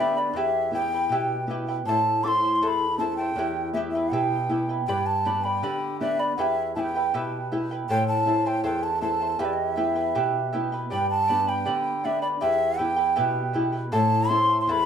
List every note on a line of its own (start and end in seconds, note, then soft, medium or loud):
0.00 0.32 D3 medium
0.00 0.27 B3 soft
0.00 0.27 D4 soft
0.00 0.27 G4 medium
0.00 0.17 B4 medium
0.00 0.16 D5 medium
0.00 0.20 E5 medium
0.00 0.17 G5 soft
0.00 0.15 B5 medium
0.17 0.35 B4 soft
0.17 0.35 D5 medium
0.17 0.38 D5 medium
0.17 0.35 B5 soft
0.33 1.07 E2 medium
0.33 0.73 E4 medium
0.33 0.73 G4 medium
0.33 0.74 B4 medium
0.33 0.74 E5 medium
0.33 0.72 E5 medium
0.33 0.73 G5 medium
0.71 1.32 B3 soft
0.71 1.33 E4 soft
0.71 0.92 E4 medium
0.71 1.33 G4 soft
0.71 0.93 B4 medium
0.71 0.92 E5 medium
0.71 1.45 G5 medium
0.71 0.93 G5 medium
0.94 1.11 E4 soft
0.94 1.11 B4 soft
0.94 1.11 G5 soft
1.09 1.83 B2 medium
1.09 1.49 E4 medium
1.09 1.49 G4 medium
1.09 1.49 B4 medium
1.09 1.49 E5 medium
1.09 1.49 G5 medium
1.47 1.78 B3 soft
1.47 1.78 E4 soft
1.47 1.68 E4 medium
1.47 1.78 G4 soft
1.47 1.68 B4 medium
1.47 1.68 E5 medium
1.51 1.67 G5 medium
1.68 1.87 E4 soft
1.68 1.87 B4 soft
1.68 1.87 G5 medium
1.85 2.59 A2 medium
1.85 2.24 E4 medium
1.85 2.25 A4 medium
1.85 2.24 C5 medium
1.85 2.23 E5 medium
1.85 2.25 A5 loud
1.85 2.25 A5 medium
2.24 2.84 C4 soft
2.24 2.84 E4 soft
2.24 2.43 E4 medium
2.24 2.84 A4 soft
2.24 2.43 C5 medium
2.24 2.43 E5 medium
2.24 2.42 A5 medium
2.24 2.29 D6 medium
2.28 2.55 C6 loud
2.43 2.62 E4 soft
2.43 2.62 C5 soft
2.43 2.61 A5 medium
2.55 2.63 C6 medium
2.62 3.35 E2 medium
2.62 2.99 E4 medium
2.62 3.00 A4 medium
2.62 3.00 C5 medium
2.62 2.99 E5 medium
2.62 3.00 A5 medium
2.62 2.68 C6 medium
2.67 2.98 B5 medium
2.98 3.29 C4 soft
2.98 3.29 E4 soft
2.98 3.19 E4 medium
2.98 3.29 A4 soft
2.98 3.19 C5 medium
2.98 3.19 E5 medium
2.98 3.16 A5 medium
2.98 3.18 A5 medium
3.16 3.70 G5 medium
3.16 3.37 A5 medium
3.20 3.37 E4 soft
3.20 3.38 C5 soft
3.36 4.09 E2 medium
3.36 3.75 E4 medium
3.36 3.75 G4 medium
3.36 3.76 B4 medium
3.36 3.74 E5 medium
3.36 3.75 G5 medium
3.73 4.34 B3 soft
3.73 4.35 E4 soft
3.73 3.94 E4 medium
3.73 4.35 G4 medium
3.73 3.94 B4 medium
3.73 3.80 E5 medium
3.73 3.94 E5 medium
3.73 3.94 G5 medium
3.91 4.14 E5 medium
3.95 4.12 E4 soft
3.95 4.12 B4 soft
3.95 4.13 G5 medium
4.11 4.85 B2 medium
4.11 4.49 E4 medium
4.11 4.50 G4 medium
4.11 4.50 B4 medium
4.11 4.49 E5 medium
4.11 4.69 G5 medium
4.11 4.50 G5 medium
4.49 4.80 B3 soft
4.49 4.80 E4 soft
4.49 4.69 E4 medium
4.49 4.80 G4 medium
4.49 4.69 B4 medium
4.49 4.69 E5 medium
4.49 4.68 G5 medium
4.69 4.88 E4 soft
4.69 4.87 B4 soft
4.69 4.87 G5 soft
4.87 5.61 G2 medium
4.87 5.25 G4 medium
4.87 5.24 B4 medium
4.87 5.25 D5 medium
4.87 5.08 G5 medium
4.87 5.24 G5 medium
4.87 5.26 B5 medium
5.06 5.45 A5 medium
5.25 5.86 B3 soft
5.25 5.86 D4 soft
5.25 5.86 G4 soft
5.25 5.44 B4 medium
5.25 5.44 D5 medium
5.25 5.44 G5 medium
5.25 5.44 B5 medium
5.44 5.62 B4 soft
5.44 5.62 D5 soft
5.44 6.00 G5 medium
5.44 5.62 B5 medium
5.63 6.36 D3 medium
5.63 6.01 G4 medium
5.63 6.01 B4 medium
5.63 6.01 D5 medium
5.63 6.00 G5 medium
5.63 6.01 B5 medium
6.00 6.31 B3 soft
6.00 6.31 D4 soft
6.00 6.31 G4 medium
6.00 6.20 B4 soft
6.00 6.19 D5 medium
6.00 6.21 E5 medium
6.00 6.20 G5 soft
6.00 6.18 B5 medium
6.19 6.38 B4 soft
6.19 6.36 D5 medium
6.19 6.39 D5 soft
6.19 6.38 B5 soft
6.36 7.11 E2 medium
6.36 6.76 E4 medium
6.36 6.76 G4 medium
6.36 6.76 B4 medium
6.36 6.75 E5 medium
6.36 6.42 F#5 medium
6.36 6.77 G5 medium
6.41 6.72 E5 medium
6.75 7.36 B3 soft
6.75 7.37 E4 soft
6.75 6.95 E4 medium
6.75 7.37 G4 soft
6.75 6.95 B4 medium
6.75 6.95 E5 medium
6.75 6.94 G5 medium
6.75 6.81 A5 medium
6.80 7.47 G5 medium
6.95 7.14 E4 soft
6.95 7.14 B4 soft
6.95 7.14 G5 soft
7.14 7.87 B2 medium
7.14 7.51 E4 medium
7.14 7.52 G4 medium
7.14 7.51 B4 medium
7.14 7.51 E5 medium
7.14 7.52 G5 medium
7.52 7.82 B3 soft
7.52 7.82 E4 soft
7.52 7.71 E4 medium
7.52 7.82 G4 soft
7.52 7.71 B4 medium
7.52 7.71 E5 medium
7.52 7.70 G5 medium
7.71 7.89 E4 soft
7.71 7.89 B4 soft
7.71 7.90 G5 medium
7.89 8.63 A2 medium
7.89 8.26 E4 medium
7.89 8.27 A4 medium
7.89 8.26 C5 medium
7.89 8.25 E5 medium
7.89 8.07 G5 loud
7.89 8.27 A5 medium
8.08 8.48 A5 medium
8.25 8.86 C4 soft
8.25 8.87 E4 soft
8.25 8.45 E4 medium
8.25 8.87 A4 soft
8.25 8.45 C5 medium
8.25 8.46 E5 medium
8.25 8.44 A5 medium
8.45 8.63 E4 soft
8.45 8.63 C5 soft
8.45 8.64 G5 medium
8.45 8.63 A5 medium
8.64 9.38 E2 medium
8.64 9.01 E4 medium
8.64 9.02 A4 medium
8.64 9.02 C5 medium
8.64 9.00 E5 medium
8.64 8.85 G5 medium
8.64 9.02 A5 medium
8.83 9.02 A5 medium
9.01 9.32 C4 soft
9.01 9.32 E4 soft
9.01 9.21 E4 medium
9.01 9.32 A4 soft
9.01 9.21 C5 medium
9.01 9.21 E5 medium
9.01 9.41 A5 medium
9.01 9.20 A5 medium
9.21 9.39 E4 soft
9.21 9.39 C5 soft
9.21 9.40 A5 medium
9.39 10.13 E2 medium
9.39 9.76 E4 medium
9.39 9.77 G4 medium
9.39 9.76 B4 medium
9.39 9.75 E5 medium
9.39 9.46 E5 medium
9.39 9.76 G5 medium
9.45 9.55 D5 medium
9.53 9.71 D#5 medium
9.71 10.53 E5 medium
9.76 10.38 B3 soft
9.76 9.95 E4 medium
9.76 10.38 E4 soft
9.76 10.38 G4 soft
9.76 9.95 B4 medium
9.76 9.96 E5 medium
9.76 9.94 G5 medium
9.95 10.15 E4 soft
9.95 10.15 B4 soft
9.95 10.15 G5 soft
10.15 10.89 B2 medium
10.15 10.52 E4 medium
10.15 10.53 G4 medium
10.15 10.53 B4 medium
10.15 10.51 E5 medium
10.15 10.52 G5 medium
10.53 10.84 B3 soft
10.53 10.72 E4 medium
10.53 10.84 E4 soft
10.53 10.84 G4 soft
10.53 10.72 B4 medium
10.53 10.72 E5 medium
10.53 10.71 G5 medium
10.72 10.91 E4 soft
10.72 10.90 B4 medium
10.72 10.90 G5 medium
10.90 11.65 G2 medium
10.90 11.28 G4 medium
10.90 11.27 B4 medium
10.90 11.28 D5 medium
10.90 11.26 G5 medium
10.90 11.09 G5 loud
10.90 11.28 B5 medium
11.10 11.50 A5 loud
11.28 11.90 B3 soft
11.28 11.90 D4 soft
11.28 11.90 G4 soft
11.28 11.47 B4 medium
11.28 11.47 D5 medium
11.28 11.47 G5 medium
11.28 11.46 B5 medium
11.47 11.65 B4 soft
11.47 11.65 D5 soft
11.47 12.07 G5 medium
11.47 11.65 B5 medium
11.65 12.40 D3 medium
11.65 12.03 G4 medium
11.65 12.03 B4 medium
11.65 12.03 D5 medium
11.65 12.03 G5 medium
11.65 12.04 B5 medium
12.04 12.34 B3 soft
12.04 12.35 D4 soft
12.04 12.35 G4 soft
12.04 12.22 B4 medium
12.04 12.21 D5 medium
12.04 12.21 E5 medium
12.04 12.23 G5 medium
12.04 12.21 B5 medium
12.22 12.41 B4 soft
12.22 12.28 D5 medium
12.22 12.41 D5 medium
12.22 12.41 B5 medium
12.41 13.15 E2 medium
12.41 12.76 E4 medium
12.41 12.79 G4 medium
12.41 12.77 B4 medium
12.41 12.76 E5 medium
12.41 12.80 E5 loud
12.41 12.77 G5 medium
12.77 13.40 B3 soft
12.77 12.97 E4 medium
12.77 13.40 E4 soft
12.77 13.40 G4 soft
12.77 12.96 B4 medium
12.77 12.97 E5 medium
12.77 13.54 G5 medium
12.77 12.95 G5 medium
12.96 13.15 E4 soft
12.96 13.16 B4 medium
12.96 13.15 G5 medium
13.16 13.90 B2 medium
13.16 13.53 E4 medium
13.16 13.54 G4 medium
13.16 13.53 B4 medium
13.16 13.52 E5 medium
13.16 13.53 G5 medium
13.53 13.85 B3 soft
13.53 13.73 E4 medium
13.53 13.85 E4 soft
13.53 13.85 G4 soft
13.53 13.72 B4 medium
13.53 13.73 E5 medium
13.53 13.71 G5 medium
13.72 13.91 E4 soft
13.72 13.92 B4 soft
13.72 13.92 G5 medium
13.92 14.66 A2 medium
13.92 14.29 E4 medium
13.92 14.30 A4 medium
13.92 14.30 C5 medium
13.92 14.28 E5 medium
13.92 14.30 A5 loud
13.92 14.30 A5 medium
14.29 14.86 C4 soft
14.29 14.49 E4 medium
14.29 14.86 E4 soft
14.29 14.86 A4 soft
14.29 14.49 C5 medium
14.29 14.48 E5 medium
14.29 14.48 A5 medium
14.29 14.60 C6 loud
14.49 14.68 E4 soft
14.49 14.68 C5 soft
14.49 14.68 A5 medium
14.61 14.67 C6 medium
14.67 14.86 E2 medium
14.67 14.86 E4 medium
14.67 14.86 A4 medium
14.67 14.86 C5 medium
14.67 14.86 E5 medium
14.67 14.86 A5 medium
14.67 14.86 B5 loud
14.67 14.71 C6 loud